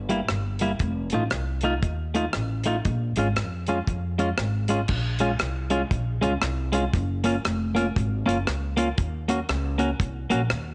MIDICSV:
0, 0, Header, 1, 4, 480
1, 0, Start_track
1, 0, Key_signature, -5, "minor"
1, 0, Tempo, 510638
1, 759, Time_signature, 4, 2, 24, 8
1, 10098, End_track
2, 0, Start_track
2, 0, Title_t, "Clean electric guitar"
2, 0, Program_c, 0, 27
2, 86, Note_on_c, 0, 55, 82
2, 96, Note_on_c, 0, 58, 85
2, 98, Note_on_c, 0, 64, 95
2, 179, Note_off_c, 0, 55, 0
2, 183, Note_off_c, 0, 58, 0
2, 185, Note_off_c, 0, 64, 0
2, 576, Note_on_c, 0, 55, 72
2, 583, Note_on_c, 0, 58, 79
2, 584, Note_on_c, 0, 64, 85
2, 664, Note_off_c, 0, 55, 0
2, 668, Note_off_c, 0, 58, 0
2, 668, Note_off_c, 0, 64, 0
2, 1061, Note_on_c, 0, 57, 72
2, 1070, Note_on_c, 0, 63, 69
2, 1077, Note_on_c, 0, 65, 82
2, 1148, Note_off_c, 0, 57, 0
2, 1152, Note_off_c, 0, 63, 0
2, 1156, Note_off_c, 0, 65, 0
2, 1536, Note_on_c, 0, 57, 75
2, 1543, Note_on_c, 0, 63, 98
2, 1551, Note_on_c, 0, 65, 106
2, 1626, Note_off_c, 0, 57, 0
2, 1629, Note_off_c, 0, 63, 0
2, 1633, Note_off_c, 0, 65, 0
2, 2016, Note_on_c, 0, 57, 82
2, 2025, Note_on_c, 0, 63, 88
2, 2029, Note_on_c, 0, 65, 89
2, 2106, Note_off_c, 0, 57, 0
2, 2111, Note_off_c, 0, 63, 0
2, 2113, Note_off_c, 0, 65, 0
2, 2497, Note_on_c, 0, 57, 85
2, 2505, Note_on_c, 0, 63, 85
2, 2512, Note_on_c, 0, 65, 92
2, 2587, Note_off_c, 0, 57, 0
2, 2591, Note_off_c, 0, 63, 0
2, 2595, Note_off_c, 0, 65, 0
2, 2984, Note_on_c, 0, 56, 75
2, 2992, Note_on_c, 0, 65, 87
2, 2994, Note_on_c, 0, 61, 80
2, 3071, Note_off_c, 0, 56, 0
2, 3075, Note_off_c, 0, 65, 0
2, 3076, Note_off_c, 0, 61, 0
2, 3461, Note_on_c, 0, 56, 69
2, 3467, Note_on_c, 0, 61, 74
2, 3469, Note_on_c, 0, 65, 90
2, 3550, Note_off_c, 0, 56, 0
2, 3553, Note_off_c, 0, 61, 0
2, 3554, Note_off_c, 0, 65, 0
2, 3935, Note_on_c, 0, 56, 81
2, 3940, Note_on_c, 0, 61, 90
2, 3944, Note_on_c, 0, 65, 97
2, 4027, Note_off_c, 0, 56, 0
2, 4030, Note_off_c, 0, 61, 0
2, 4032, Note_off_c, 0, 65, 0
2, 4409, Note_on_c, 0, 56, 83
2, 4418, Note_on_c, 0, 61, 87
2, 4421, Note_on_c, 0, 65, 87
2, 4504, Note_off_c, 0, 56, 0
2, 4509, Note_off_c, 0, 61, 0
2, 4510, Note_off_c, 0, 65, 0
2, 4891, Note_on_c, 0, 56, 76
2, 4894, Note_on_c, 0, 61, 77
2, 4900, Note_on_c, 0, 65, 80
2, 4985, Note_off_c, 0, 56, 0
2, 4987, Note_off_c, 0, 61, 0
2, 4990, Note_off_c, 0, 65, 0
2, 5362, Note_on_c, 0, 56, 81
2, 5366, Note_on_c, 0, 61, 94
2, 5370, Note_on_c, 0, 65, 94
2, 5461, Note_off_c, 0, 56, 0
2, 5463, Note_off_c, 0, 61, 0
2, 5465, Note_off_c, 0, 65, 0
2, 5842, Note_on_c, 0, 56, 88
2, 5850, Note_on_c, 0, 61, 95
2, 5861, Note_on_c, 0, 65, 96
2, 5941, Note_off_c, 0, 56, 0
2, 5945, Note_off_c, 0, 61, 0
2, 5950, Note_off_c, 0, 65, 0
2, 6320, Note_on_c, 0, 56, 72
2, 6329, Note_on_c, 0, 61, 74
2, 6339, Note_on_c, 0, 65, 83
2, 6420, Note_off_c, 0, 56, 0
2, 6424, Note_off_c, 0, 61, 0
2, 6429, Note_off_c, 0, 65, 0
2, 6805, Note_on_c, 0, 58, 84
2, 6815, Note_on_c, 0, 61, 78
2, 6820, Note_on_c, 0, 65, 81
2, 6902, Note_off_c, 0, 58, 0
2, 6907, Note_off_c, 0, 61, 0
2, 6909, Note_off_c, 0, 65, 0
2, 7283, Note_on_c, 0, 58, 81
2, 7293, Note_on_c, 0, 61, 81
2, 7299, Note_on_c, 0, 65, 82
2, 7380, Note_off_c, 0, 58, 0
2, 7385, Note_off_c, 0, 61, 0
2, 7389, Note_off_c, 0, 65, 0
2, 7764, Note_on_c, 0, 58, 86
2, 7765, Note_on_c, 0, 61, 83
2, 7778, Note_on_c, 0, 65, 92
2, 7861, Note_off_c, 0, 58, 0
2, 7861, Note_off_c, 0, 61, 0
2, 7868, Note_off_c, 0, 65, 0
2, 8242, Note_on_c, 0, 58, 84
2, 8251, Note_on_c, 0, 61, 70
2, 8256, Note_on_c, 0, 65, 92
2, 8339, Note_off_c, 0, 58, 0
2, 8344, Note_off_c, 0, 61, 0
2, 8346, Note_off_c, 0, 65, 0
2, 8727, Note_on_c, 0, 58, 71
2, 8736, Note_on_c, 0, 61, 79
2, 8737, Note_on_c, 0, 66, 93
2, 8821, Note_off_c, 0, 58, 0
2, 8826, Note_off_c, 0, 61, 0
2, 8826, Note_off_c, 0, 66, 0
2, 9196, Note_on_c, 0, 58, 82
2, 9204, Note_on_c, 0, 61, 91
2, 9209, Note_on_c, 0, 66, 81
2, 9295, Note_off_c, 0, 58, 0
2, 9299, Note_off_c, 0, 61, 0
2, 9302, Note_off_c, 0, 66, 0
2, 9682, Note_on_c, 0, 58, 93
2, 9692, Note_on_c, 0, 61, 94
2, 9696, Note_on_c, 0, 66, 103
2, 9778, Note_off_c, 0, 58, 0
2, 9783, Note_off_c, 0, 61, 0
2, 9785, Note_off_c, 0, 66, 0
2, 10098, End_track
3, 0, Start_track
3, 0, Title_t, "Upright bass"
3, 0, Program_c, 1, 32
3, 0, Note_on_c, 1, 31, 95
3, 203, Note_off_c, 1, 31, 0
3, 275, Note_on_c, 1, 31, 92
3, 685, Note_off_c, 1, 31, 0
3, 755, Note_on_c, 1, 29, 100
3, 1006, Note_off_c, 1, 29, 0
3, 1054, Note_on_c, 1, 33, 86
3, 1213, Note_off_c, 1, 33, 0
3, 1241, Note_on_c, 1, 36, 85
3, 1718, Note_off_c, 1, 36, 0
3, 1718, Note_on_c, 1, 39, 98
3, 2128, Note_off_c, 1, 39, 0
3, 2208, Note_on_c, 1, 33, 99
3, 2614, Note_off_c, 1, 33, 0
3, 2686, Note_on_c, 1, 34, 100
3, 2934, Note_off_c, 1, 34, 0
3, 2975, Note_on_c, 1, 32, 88
3, 3159, Note_on_c, 1, 41, 91
3, 3173, Note_off_c, 1, 32, 0
3, 3569, Note_off_c, 1, 41, 0
3, 3645, Note_on_c, 1, 41, 103
3, 4053, Note_off_c, 1, 41, 0
3, 4123, Note_on_c, 1, 32, 96
3, 4532, Note_off_c, 1, 32, 0
3, 4600, Note_on_c, 1, 34, 95
3, 5010, Note_off_c, 1, 34, 0
3, 5080, Note_on_c, 1, 36, 88
3, 5490, Note_off_c, 1, 36, 0
3, 5557, Note_on_c, 1, 34, 90
3, 5809, Note_off_c, 1, 34, 0
3, 5854, Note_on_c, 1, 37, 96
3, 6014, Note_off_c, 1, 37, 0
3, 6036, Note_on_c, 1, 36, 94
3, 6448, Note_off_c, 1, 36, 0
3, 6523, Note_on_c, 1, 30, 98
3, 6931, Note_off_c, 1, 30, 0
3, 7004, Note_on_c, 1, 29, 93
3, 7411, Note_off_c, 1, 29, 0
3, 7490, Note_on_c, 1, 32, 94
3, 7735, Note_off_c, 1, 32, 0
3, 7779, Note_on_c, 1, 30, 85
3, 7937, Note_off_c, 1, 30, 0
3, 7964, Note_on_c, 1, 37, 91
3, 8371, Note_off_c, 1, 37, 0
3, 8443, Note_on_c, 1, 39, 97
3, 8850, Note_off_c, 1, 39, 0
3, 8922, Note_on_c, 1, 37, 100
3, 9329, Note_off_c, 1, 37, 0
3, 9400, Note_on_c, 1, 36, 92
3, 9648, Note_off_c, 1, 36, 0
3, 9693, Note_on_c, 1, 34, 87
3, 9851, Note_off_c, 1, 34, 0
3, 9881, Note_on_c, 1, 39, 92
3, 10098, Note_off_c, 1, 39, 0
3, 10098, End_track
4, 0, Start_track
4, 0, Title_t, "Drums"
4, 89, Note_on_c, 9, 42, 73
4, 183, Note_off_c, 9, 42, 0
4, 268, Note_on_c, 9, 37, 106
4, 269, Note_on_c, 9, 42, 72
4, 362, Note_off_c, 9, 37, 0
4, 363, Note_off_c, 9, 42, 0
4, 556, Note_on_c, 9, 42, 87
4, 650, Note_off_c, 9, 42, 0
4, 746, Note_on_c, 9, 42, 74
4, 752, Note_on_c, 9, 36, 103
4, 840, Note_off_c, 9, 42, 0
4, 846, Note_off_c, 9, 36, 0
4, 1033, Note_on_c, 9, 42, 83
4, 1127, Note_off_c, 9, 42, 0
4, 1225, Note_on_c, 9, 42, 68
4, 1230, Note_on_c, 9, 37, 108
4, 1319, Note_off_c, 9, 42, 0
4, 1324, Note_off_c, 9, 37, 0
4, 1511, Note_on_c, 9, 42, 73
4, 1605, Note_off_c, 9, 42, 0
4, 1716, Note_on_c, 9, 36, 114
4, 1722, Note_on_c, 9, 42, 67
4, 1810, Note_off_c, 9, 36, 0
4, 1816, Note_off_c, 9, 42, 0
4, 2018, Note_on_c, 9, 42, 72
4, 2112, Note_off_c, 9, 42, 0
4, 2191, Note_on_c, 9, 37, 105
4, 2192, Note_on_c, 9, 42, 68
4, 2285, Note_off_c, 9, 37, 0
4, 2286, Note_off_c, 9, 42, 0
4, 2477, Note_on_c, 9, 42, 86
4, 2571, Note_off_c, 9, 42, 0
4, 2677, Note_on_c, 9, 42, 78
4, 2681, Note_on_c, 9, 36, 109
4, 2771, Note_off_c, 9, 42, 0
4, 2775, Note_off_c, 9, 36, 0
4, 2969, Note_on_c, 9, 42, 90
4, 3063, Note_off_c, 9, 42, 0
4, 3159, Note_on_c, 9, 42, 73
4, 3164, Note_on_c, 9, 37, 115
4, 3253, Note_off_c, 9, 42, 0
4, 3258, Note_off_c, 9, 37, 0
4, 3446, Note_on_c, 9, 42, 74
4, 3540, Note_off_c, 9, 42, 0
4, 3642, Note_on_c, 9, 36, 110
4, 3649, Note_on_c, 9, 42, 65
4, 3736, Note_off_c, 9, 36, 0
4, 3743, Note_off_c, 9, 42, 0
4, 3938, Note_on_c, 9, 42, 73
4, 4032, Note_off_c, 9, 42, 0
4, 4113, Note_on_c, 9, 37, 108
4, 4115, Note_on_c, 9, 42, 71
4, 4207, Note_off_c, 9, 37, 0
4, 4209, Note_off_c, 9, 42, 0
4, 4400, Note_on_c, 9, 42, 91
4, 4494, Note_off_c, 9, 42, 0
4, 4587, Note_on_c, 9, 49, 91
4, 4596, Note_on_c, 9, 36, 123
4, 4681, Note_off_c, 9, 49, 0
4, 4690, Note_off_c, 9, 36, 0
4, 4876, Note_on_c, 9, 42, 89
4, 4970, Note_off_c, 9, 42, 0
4, 5068, Note_on_c, 9, 42, 74
4, 5073, Note_on_c, 9, 37, 111
4, 5162, Note_off_c, 9, 42, 0
4, 5167, Note_off_c, 9, 37, 0
4, 5359, Note_on_c, 9, 42, 75
4, 5453, Note_off_c, 9, 42, 0
4, 5555, Note_on_c, 9, 36, 112
4, 5561, Note_on_c, 9, 42, 75
4, 5649, Note_off_c, 9, 36, 0
4, 5655, Note_off_c, 9, 42, 0
4, 5852, Note_on_c, 9, 42, 77
4, 5946, Note_off_c, 9, 42, 0
4, 6031, Note_on_c, 9, 37, 104
4, 6032, Note_on_c, 9, 42, 68
4, 6125, Note_off_c, 9, 37, 0
4, 6126, Note_off_c, 9, 42, 0
4, 6324, Note_on_c, 9, 42, 98
4, 6418, Note_off_c, 9, 42, 0
4, 6518, Note_on_c, 9, 42, 78
4, 6519, Note_on_c, 9, 36, 120
4, 6612, Note_off_c, 9, 42, 0
4, 6613, Note_off_c, 9, 36, 0
4, 6804, Note_on_c, 9, 42, 94
4, 6898, Note_off_c, 9, 42, 0
4, 7000, Note_on_c, 9, 42, 78
4, 7005, Note_on_c, 9, 37, 104
4, 7094, Note_off_c, 9, 42, 0
4, 7099, Note_off_c, 9, 37, 0
4, 7298, Note_on_c, 9, 42, 79
4, 7392, Note_off_c, 9, 42, 0
4, 7486, Note_on_c, 9, 36, 109
4, 7499, Note_on_c, 9, 42, 68
4, 7580, Note_off_c, 9, 36, 0
4, 7593, Note_off_c, 9, 42, 0
4, 7790, Note_on_c, 9, 42, 79
4, 7884, Note_off_c, 9, 42, 0
4, 7964, Note_on_c, 9, 37, 104
4, 7965, Note_on_c, 9, 42, 75
4, 8058, Note_off_c, 9, 37, 0
4, 8059, Note_off_c, 9, 42, 0
4, 8248, Note_on_c, 9, 42, 94
4, 8342, Note_off_c, 9, 42, 0
4, 8438, Note_on_c, 9, 42, 81
4, 8442, Note_on_c, 9, 36, 121
4, 8532, Note_off_c, 9, 42, 0
4, 8536, Note_off_c, 9, 36, 0
4, 8730, Note_on_c, 9, 42, 99
4, 8824, Note_off_c, 9, 42, 0
4, 8919, Note_on_c, 9, 42, 76
4, 8924, Note_on_c, 9, 37, 112
4, 9013, Note_off_c, 9, 42, 0
4, 9018, Note_off_c, 9, 37, 0
4, 9203, Note_on_c, 9, 42, 78
4, 9297, Note_off_c, 9, 42, 0
4, 9397, Note_on_c, 9, 36, 113
4, 9409, Note_on_c, 9, 42, 76
4, 9491, Note_off_c, 9, 36, 0
4, 9503, Note_off_c, 9, 42, 0
4, 9686, Note_on_c, 9, 42, 78
4, 9780, Note_off_c, 9, 42, 0
4, 9871, Note_on_c, 9, 37, 110
4, 9872, Note_on_c, 9, 42, 73
4, 9965, Note_off_c, 9, 37, 0
4, 9966, Note_off_c, 9, 42, 0
4, 10098, End_track
0, 0, End_of_file